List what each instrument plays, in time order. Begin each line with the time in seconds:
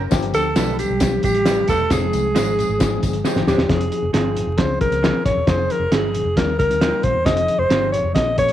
Already playing: tine electric piano C#4 A#4
0.11 fingered electric bass G1, tine electric piano F3 B3 D4 G4, kick, snare, closed hi-hat, tambourine, muted conga, low conga
0.22 closed hi-hat, muted conga
0.33 fingered electric bass D2, vibraphone A3, alto saxophone A4, closed hi-hat, tambourine, high conga
0.55 fingered electric bass B1, tine electric piano F3 B3 D4 G4, clean electric guitar D4 F4 B4, snare, closed hi-hat, tambourine
0.68 muted conga, high conga
0.79 vibraphone G3, alto saxophone G4, closed hi-hat, tambourine, low conga
0.90 fingered electric bass B1
1.00 tine electric piano F3 B3 D4 G4, kick, snare, closed hi-hat, tambourine
1.14 muted conga
1.23 fingered electric bass A1, vibraphone G3, alto saxophone G4, kick, closed hi-hat, tambourine
1.34 closed hi-hat, high conga
1.45 tine electric piano F3 B3 D4 G4, clean electric guitar D4 F4 B4, snare, closed hi-hat, tambourine, muted conga
1.60 muted conga, high conga
1.68 fingered electric bass E1, vibraphone A3, clean electric guitar D4 F4 B4, alto saxophone A4, kick, closed hi-hat, tambourine
1.72 high conga, low conga
1.90 fingered electric bass F1, tine electric piano F3 C4 D#4 G#4, vibraphone G#3, alto saxophone G#4, kick, snare, closed hi-hat, tambourine, low conga
2.13 fingered electric bass C2, closed hi-hat, tambourine, high conga
2.35 fingered electric bass G#1, tine electric piano F3 C4 D#4 G#4, clean electric guitar D#4 G#4 C5, snare, closed hi-hat, tambourine
2.48 muted conga, high conga
2.58 closed hi-hat, tambourine, low conga
2.69 fingered electric bass G#1
2.79 tine electric piano F3 C4 D#4 G#4, kick, snare, closed hi-hat, tambourine
2.93 muted conga
3.03 fingered electric bass G1, kick, closed hi-hat, tambourine
3.13 closed hi-hat, high conga
3.24 tine electric piano F3 C4 D#4 G4, clean electric guitar D#4 G#4 C5, snare, tambourine, muted conga
3.36 fingered electric bass G#1, snare, high conga
3.46 fingered electric bass D#1, clean electric guitar D#4 G#4 C5, alto saxophone G4, snare, tambourine, high conga, low conga
3.58 fingered electric bass E1, snare
3.68 fingered electric bass F1, tine electric piano F3 C4 D#4 G#4, alto saxophone G#4, kick, snare, closed hi-hat
3.81 closed hi-hat, muted conga
3.92 closed hi-hat, high conga
4.02 fingered electric bass F1
4.12 fingered electric bass G1, tine electric piano F3 C4 D#4 F4, clean electric guitar C4 D#4 G#4, alto saxophone G#4, snare, closed hi-hat
4.24 high conga
4.35 closed hi-hat, low conga
4.47 fingered electric bass F1
4.58 fingered electric bass C#2, tine electric piano F3 C4 C#4 G#4, alto saxophone C5, kick, snare, closed hi-hat
4.80 fingered electric bass C2, tine electric piano F3 C4 C#4 G#4, alto saxophone A#4, kick, closed hi-hat
4.91 fingered electric bass C#2, closed hi-hat, high conga
5.03 tine electric piano F3 C4 C#4 G#4, clean electric guitar C4 F4 G#4, snare, closed hi-hat, muted conga
5.15 muted conga, high conga
5.25 fingered electric bass G#1, alto saxophone C#5, kick, snare, closed hi-hat, high conga, low conga
5.35 fingered electric bass E1
5.47 fingered electric bass F1, tine electric piano F3 C4 D#4 G#4, alto saxophone C5, kick, snare, closed hi-hat
5.59 muted conga
5.70 alto saxophone A#4, closed hi-hat, high conga
5.79 fingered electric bass F1
5.91 fingered electric bass G1, tine electric piano F3 C4 D#4 G4, clean electric guitar C4 D#4 G#4, alto saxophone G#4, snare, closed hi-hat
5.98 tine electric piano G#4
6.03 muted conga, high conga
6.14 closed hi-hat, low conga
6.25 fingered electric bass F1
6.36 fingered electric bass D#2, tine electric piano G3 C4 D#4 A#4, alto saxophone A#4, kick, snare, closed hi-hat
6.59 fingered electric bass C#2, tine electric piano G3 C4 D#4 A#4, alto saxophone A#4, kick, closed hi-hat
6.70 fingered electric bass D#2, closed hi-hat, high conga
6.81 tine electric piano G3 C4 D#4 F4, clean electric guitar A#3 D#4 G4, snare, closed hi-hat
6.92 muted conga, high conga
7.03 fingered electric bass A#1, alto saxophone C5, kick, closed hi-hat, high conga, low conga
7.13 fingered electric bass E2
7.25 fingered electric bass F1, tine electric piano F3 C4 D#4 G#4, alto saxophone D#5, kick, snare, closed hi-hat
7.37 closed hi-hat
7.48 closed hi-hat, high conga
7.58 fingered electric bass F1, alto saxophone C5
7.69 fingered electric bass G1, tine electric piano F3 C4 D#4 G4, clean electric guitar C4 D#4 G#4, snare, closed hi-hat
7.82 high conga
7.92 alto saxophone C#5, closed hi-hat, low conga
8.04 fingered electric bass F1
8.13 fingered electric bass A#1, tine electric piano F3 A#3 C#4 G#4, alto saxophone D#5, kick, snare, closed hi-hat
8.26 muted conga
8.36 fingered electric bass A#2, tine electric piano F3 A#3 C#4 G#4, alto saxophone C#5, kick, closed hi-hat
8.48 closed hi-hat, high conga